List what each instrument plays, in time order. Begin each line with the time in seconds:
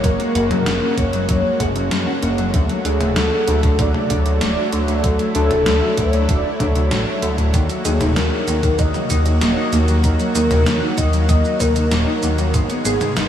Already playing: analog synth pad C#3 G#3 A#3 F#4
0.04 analog synth bass F#1, clean electric guitar F#3, synth arpeggio sound F#3, soft synth lead A#4, kick, closed hi-hat
0.19 synth arpeggio sound G#3, clean electric guitar A#3, closed hi-hat
0.35 analog synth bass F#1, synth arpeggio sound A#3, clean electric guitar F#4, soft synth lead A#4, closed hi-hat
0.51 analog synth bass F#2, clean electric guitar F#3, synth arpeggio sound C#4, closed hi-hat, mid tom
0.66 analog synth bass F#1, clean electric guitar C#4, synth arpeggio sound F#4, snare, closed hi-hat
0.82 clean electric guitar F#3, synth arpeggio sound C#4
0.97 analog synth bass F#1, synth arpeggio sound A#3, clean electric guitar F#4, soft synth lead C#5, kick, closed hi-hat
1.13 analog synth bass F#1, clean electric guitar F#3, synth arpeggio sound G#3, closed hi-hat
1.29 analog synth bass F#1, synth arpeggio sound F#3, clean electric guitar F#3, soft synth lead C#5, kick, closed hi-hat
1.44 synth arpeggio sound G#3
1.60 analog synth bass F#1, synth arpeggio sound A#3, clean electric guitar F#4, soft synth lead G#4, kick, closed hi-hat, mid tom
1.75 analog synth bass F#1, clean electric guitar F#3, synth arpeggio sound C#4, closed hi-hat
1.91 analog synth bass F#2, clean electric guitar C#4, synth arpeggio sound F#4, snare, closed hi-hat
2.07 synth arpeggio sound C#4, clean electric guitar F#4
2.22 analog synth bass F#1, synth arpeggio sound A#3, clean electric guitar C#4, closed hi-hat
2.38 analog synth bass F#1, clean electric guitar F#3, synth arpeggio sound G#3, closed hi-hat
2.54 analog synth bass D2, analog synth pad D3 F#3 A3, clean electric guitar D3, synth arpeggio sound F#3, kick, closed hi-hat
2.69 clean electric guitar F#3, synth arpeggio sound A3, closed hi-hat
2.85 analog synth bass D2, clean electric guitar D4, synth arpeggio sound D4, soft synth lead G#4, closed hi-hat
3.01 analog synth bass D1, clean electric guitar D3, synth arpeggio sound F#4, closed hi-hat, mid tom
3.16 analog synth bass D2, clean electric guitar A3, soft synth lead A4, synth arpeggio sound A4, snare, closed hi-hat
3.32 clean electric guitar D3, synth arpeggio sound F#4
3.48 analog synth bass D2, clean electric guitar D4, synth arpeggio sound D4, closed hi-hat
3.63 analog synth bass D2, clean electric guitar D3, synth arpeggio sound A3, kick, closed hi-hat
3.79 analog synth bass D2, clean electric guitar D3, synth arpeggio sound F#3, soft synth lead D5, kick, closed hi-hat
3.94 clean electric guitar D3, synth arpeggio sound A3, mid tom
4.10 analog synth bass D2, clean electric guitar D4, synth arpeggio sound D4, kick, closed hi-hat
4.26 analog synth bass D2, clean electric guitar D3, synth arpeggio sound F#4, closed hi-hat
4.41 analog synth bass D1, clean electric guitar A3, synth arpeggio sound A4, soft synth lead D5, snare, closed hi-hat
4.57 clean electric guitar D4, synth arpeggio sound F#4
4.72 analog synth bass D2, clean electric guitar A3, closed hi-hat
4.88 analog synth bass D2, clean electric guitar D3, synth arpeggio sound A3, closed hi-hat
5.04 analog synth bass D2, clean electric guitar D3, synth arpeggio sound F#3, analog synth pad E4, soft synth lead A4, kick, closed hi-hat
5.19 clean electric guitar F#3, synth arpeggio sound A3, closed hi-hat
5.35 analog synth bass D2, synth arpeggio sound D4, clean electric guitar D4, soft synth lead A4, closed hi-hat
5.50 analog synth bass D1, clean electric guitar D3, synth arpeggio sound F#4, closed hi-hat, mid tom
5.66 analog synth bass D2, clean electric guitar A3, synth arpeggio sound A4, snare, closed hi-hat
5.82 clean electric guitar D3, synth arpeggio sound F#4
5.97 analog synth bass D2, synth arpeggio sound D4, clean electric guitar D4, soft synth lead C#5, kick, closed hi-hat
6.13 analog synth bass D2, clean electric guitar D3, synth arpeggio sound A3, closed hi-hat
6.29 analog synth bass D1, clean electric guitar D3, synth arpeggio sound F#3, soft synth lead D5, kick, closed hi-hat
6.44 clean electric guitar D3, synth arpeggio sound A3
6.60 analog synth bass D2, clean electric guitar D4, synth arpeggio sound D4, soft synth lead C#5, kick, closed hi-hat, mid tom
6.75 analog synth bass D2, clean electric guitar D3, synth arpeggio sound F#4, closed hi-hat
6.91 analog synth bass A1, clean electric guitar A3, synth arpeggio sound F#4, snare, closed hi-hat
7.07 clean electric guitar D4, synth arpeggio sound D5
7.22 analog synth bass D2, clean electric guitar A3, synth arpeggio sound F#4, closed hi-hat
7.38 analog synth bass D1, clean electric guitar D3, synth arpeggio sound F#4, closed hi-hat
7.54 analog synth bass D#2, clean electric guitar D#3, analog synth pad D#3 F#3 A#3 F#4, synth arpeggio sound D#3, kick, closed hi-hat, shaker
7.69 clean electric guitar F#3, synth arpeggio sound F#3, closed hi-hat, shaker
7.85 analog synth bass D#2, synth arpeggio sound A#3, clean electric guitar D#4, soft synth lead G#4, closed hi-hat, shaker
8.01 analog synth bass D#1, clean electric guitar D#3, synth arpeggio sound D#4, closed hi-hat, mid tom, shaker
8.16 analog synth bass D#2, clean electric guitar A#3, synth arpeggio sound F#4, soft synth lead A#4, snare, closed hi-hat, shaker
8.32 clean electric guitar D#3, synth arpeggio sound D#4
8.47 analog synth bass D#2, synth arpeggio sound A#3, clean electric guitar D#4, closed hi-hat, shaker
8.63 analog synth bass D#2, clean electric guitar D#3, synth arpeggio sound F#3, kick, closed hi-hat, shaker
8.78 analog synth bass D#2, clean electric guitar D#3, synth arpeggio sound D#3, soft synth lead D#5, kick, closed hi-hat, shaker
8.94 clean electric guitar D#3, synth arpeggio sound F#3, mid tom, shaker
9.10 analog synth bass D#2, synth arpeggio sound A#3, clean electric guitar D#4, kick, closed hi-hat, shaker
9.25 analog synth bass D#2, clean electric guitar D#3, synth arpeggio sound D#4, closed hi-hat, shaker
9.41 analog synth bass D#1, clean electric guitar A#3, synth arpeggio sound F#4, soft synth lead D#5, snare, closed hi-hat, shaker
9.57 clean electric guitar D#4, synth arpeggio sound D#4
9.72 analog synth bass D#2, clean electric guitar A#3, synth arpeggio sound A#3, closed hi-hat, shaker
9.88 analog synth bass D#2, clean electric guitar D#3, synth arpeggio sound F#3, closed hi-hat, shaker
10.03 analog synth bass D#2, clean electric guitar D#3, synth arpeggio sound D#3, soft synth lead A#4, kick, closed hi-hat, shaker
10.19 clean electric guitar F#3, synth arpeggio sound F#3, closed hi-hat, shaker
10.35 analog synth bass D#2, synth arpeggio sound A#3, clean electric guitar D#4, soft synth lead A#4, closed hi-hat, shaker
10.50 analog synth bass D#1, clean electric guitar D#3, closed hi-hat, mid tom, shaker
10.66 analog synth bass D#2, clean electric guitar A#3, snare, closed hi-hat, shaker
10.82 clean electric guitar D#3, synth arpeggio sound D#4
10.97 analog synth bass D#2, clean electric guitar D#4, soft synth lead D#5, kick, closed hi-hat, shaker
11.13 analog synth bass D#2, clean electric guitar D#3, synth arpeggio sound F#3, closed hi-hat, shaker
11.22 soft synth lead F5
11.29 analog synth bass D#2, clean electric guitar D#3, synth arpeggio sound D#3, soft synth lead D#5, kick, closed hi-hat, shaker
11.44 clean electric guitar D#3, synth arpeggio sound F#3, shaker
11.60 analog synth bass D#2, synth arpeggio sound A#3, clean electric guitar D#4, soft synth lead A#4, kick, closed hi-hat, mid tom, shaker
11.76 analog synth bass D#2, clean electric guitar D#3, synth arpeggio sound D#4, closed hi-hat, shaker
11.91 analog synth bass D#1, clean electric guitar A#3, synth arpeggio sound F#4, snare, closed hi-hat, shaker
12.07 clean electric guitar D#4, synth arpeggio sound D#4
12.23 analog synth bass D#2, clean electric guitar A#3, synth arpeggio sound A#3, closed hi-hat, shaker
12.38 analog synth bass D#2, clean electric guitar D#3, synth arpeggio sound F#3, closed hi-hat, shaker
12.54 analog synth bass G#1, synth arpeggio sound D#3, clean electric guitar G#3, analog synth pad G#3 B3 G#4, kick, closed hi-hat, shaker
12.70 synth arpeggio sound G#3, clean electric guitar B3, closed hi-hat, shaker
12.85 analog synth bass G#1, synth arpeggio sound B3, soft synth lead G#4, clean electric guitar G#4, closed hi-hat, shaker
13.01 analog synth bass G#2, clean electric guitar G#3, synth arpeggio sound D#4, closed hi-hat, mid tom, shaker
13.16 analog synth bass G#1, clean electric guitar D#4, synth arpeggio sound G#4, soft synth lead B4, snare, closed hi-hat, shaker